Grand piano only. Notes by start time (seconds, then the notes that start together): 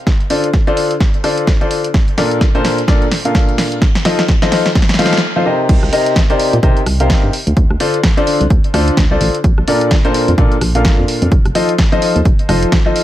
0.30 D3 D4 F4 A4 C5 D5
0.67 D3 D4 F4 A4 C5 D5
1.24 D3 D4 F4 A4 C5 D5
1.61 D3 D4 F4 A4 C5 D5
2.18 A#2 D4 F4 A4 A#4 D5
2.55 A#2 D4 F4 A4 A#4 C5
2.88 A#2 D4 F4 A4 A#4 D5
3.25 A#2 D4 F4 A4 A#4 F5
4.05 F3 D#4 F4 A4 C5 D#5
4.42 F3 D#4 F4 A4 C5 D#5
4.99 F3 D#4 F4 A4 C5 F5
5.36 F3 D#4 F4 A4 C5 F5
5.46 C3 D#4 G4 A#4 C5 D#5
5.93 C3 D#4 G4 A#4 C5 D#5
6.30 C3 D#4 G4 A#4 C5 D5
6.63 C3 D#4 G4 A#4 C5 D#5
7.00 C3 D#4 G4 A#4 C5 F5
7.80 D3 D4 F4 A4 C5 D5
8.17 D3 D4 F4 A4 C5 D5
8.74 D3 D4 F4 A4 C5 D5
9.11 D3 D4 F4 A4 C5 D5
9.68 A#2 D4 F4 A4 A#4 D5
10.05 A#2 D4 F4 A4 A#4 C5
10.38 A#2 D4 F4 A4 A#4 D5
10.75 A#2 D4 F4 A4 A#4 F5
11.55 F3 D#4 F4 A4 C5 D#5
11.92 F3 D#4 F4 A4 C5 D#5
12.49 F3 D#4 F4 A4 C5 D#5
12.86 F3 D#4 F4 A4 C5 D#5